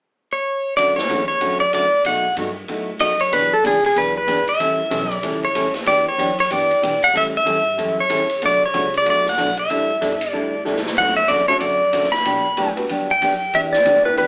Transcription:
0.33 C#5
0.77 D2 D3 F#3 A3 C#4 F#4 D5, kick, ride
0.96 C#5, snare
1.09 E2 D3 F#3 A3 C#4 F#4, kick, hi-hat pedal, ride
1.28 C#5
1.41 F#2 D3 F#3 A3 C#4 F#4, kick, ride
1.60 D5
1.73 A2 D3 F#3 A3 C#4 F#4 D5, kick, hi-hat pedal, ride
2.04 B2 F#3 A3 D#4 F#4 F#5, kick, ride
2.37 G2 B2 F#3 A3 D#4 F#4, kick, hi-hat pedal, ride
2.68 A2 B2 F#3 A3 D#4 F#4, kick, ride
3.00 F#2 B2 F#3 A3 D#4 F#4 D#5, kick, hi-hat pedal, ride
3.19 C#5, ride
3.31 B1 B2 E3 B3 D4 G#4 B4, kick, ride
3.53 A4
3.63 C#2 B2 E3 B3 D4 G#4, kick, hi-hat pedal, ride
3.84 G#4, ride
3.96 B1 B2 E3 B3 D4 G#4 B4, kick, ride
4.17 B4
4.27 G#1 B2 E3 B3 D4 G#4, kick, hi-hat pedal, ride
4.48 E5, ride
4.60 A1 E3 G3 C#4 E4 A4, kick, ride
4.90 B1 E3 G3 C#4 E4 A4, kick, hi-hat pedal, ride
5.11 D5, ride
5.23 C#2 E3 G3 C#4 E4 A4, kick, ride
5.45 C#5
5.54 D2 E3 G3 C#4 E4 A4, kick, hi-hat pedal, ride
5.74 snare, ride
5.86 E2 E3 B3 D4 G4 D5, kick, ride
6.08 C#5
6.18 F#2 E3 B3 D4 G4, kick, hi-hat pedal, ride
6.39 C#5, ride
6.50 G2 E3 B3 D4 G4 D5, kick, ride
6.71 ride
6.82 B2 E3 B3 D4 G4, kick, hi-hat pedal, ride
7.03 F#5, ride
7.13 A2 E3 G3 C#4 E4 A4 E5, kick, ride
7.37 E5
7.45 G2 E3 G3 C#4 E4 A4, kick, hi-hat pedal, ride
7.77 F#2 E3 G3 C#4 E4 A4, kick, ride
8.00 C#5
8.09 E2 E3 G3 C#4 E4 A4, kick, hi-hat pedal, ride
8.30 ride
8.42 B1 B2 F#3 A3 D4 F#4 D5, kick, ride
8.62 C#5, muted upright bass stroke
8.73 C#2 B2 F#3 A3 D4 F#4, kick, hi-hat pedal, ride
8.94 D5, ride
9.05 D2 B2 F#3 A3 D4 F#4, kick, ride
9.10 D5
9.26 F#5, snare
9.37 B1 B2 F#3 A3 D4 F#4, kick, hi-hat pedal, ride
9.57 E5, ride
9.70 A1 D3 G3 D4 E4 A4, kick, ride
10.01 G1 D3 G3 D4 E4 A4, kick, hi-hat pedal, ride
10.21 ride
10.31 D2 D3 G3 D4 E4 A4 D5, kick
10.65 C#2 D3 G3 D4 E4 A4, snare, hi-hat pedal
10.76 snare
10.86 snare
10.96 D2 D3 F#3 A3 C#4 F#4 F#5, kick, crash
11.17 E5
11.28 E2 D3 F#3 A3 C#4 F#4 D5, kick, hi-hat pedal, ride
11.48 A3 C#4 D4 F#4 A4 C#5
11.60 F#2 D3 F#3 A3 C#4 F#4 D5, kick, ride
11.92 C#3 D3 F#3 A3 C#4 F#4, kick, hi-hat pedal, ride
12.03 snare
12.12 B5, snare
12.25 B2 D3 F#3 B3 D4 G4, kick, ride
12.57 A2 D3 F#3 B3 D4 G4, kick, hi-hat pedal, ride
12.76 B3 D4 F#4 G4 B4, ride
12.89 G2 D3 F#3 B3 D4 G4, kick, ride
13.11 G5
13.21 F#2 D3 F#3 B3 D4 G4, kick, hi-hat pedal, ride
13.53 E2 E3 B3 D4 G4 E5, kick, ride
13.73 D5, snare
13.85 D2 E3 B3 D4 G4, kick, hi-hat pedal, ride
14.04 B3 D4 E4 G4 B4
14.16 C#2 E3 B3 D4 G4 B4, kick, ride

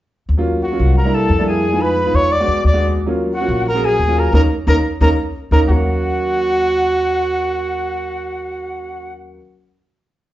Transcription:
0.29 D#2
0.38 F#3 A#3 C#4 F4
0.62 F#4 F#5
0.71 F#3 A#3 C#4 F4
0.79 C2
0.96 A#4 A#5
1.05 G3 A#3 D4 E4
1.14 A4 A5
1.29 F2
1.39 G3 A#3 D4 E4
1.47 G#4 G#5
1.72 G#3 B3 D#4 F4
1.81 B4 B5
2.06 G#3 B3 D#4 F4
2.14 E2 C#5 C#6
2.32 D5 D6
2.40 G#3 B3 D4 F#4
2.47 E2
2.64 D#2 D5 D6
2.73 G#3 B3 D4 F#4
3.06 F#3 A#3 C#4 F4
3.33 F#4 F#5
3.41 F#3 A#3 C#4 F4
3.48 A#1
3.68 A#4 A#5
3.74 F#3 A#3 C#4 G#4
3.84 G#4 G#5
3.99 D#2
4.08 F#3 A#3 C#4 F4
4.18 A#4 A#5
4.33 D#2 A#3 C#4 D#4 A#4 A#5
4.67 D#2 A#3 C#4 D#4 A#4 A#5
5.00 D#2 A#3 C#4 D#4 A#4 A#5
5.51 D#2 A#3 C#4 D#4 A#4 A#5
5.66 D#2 F#3 A#3 C#4 F#4 F#5
5.70 F#4

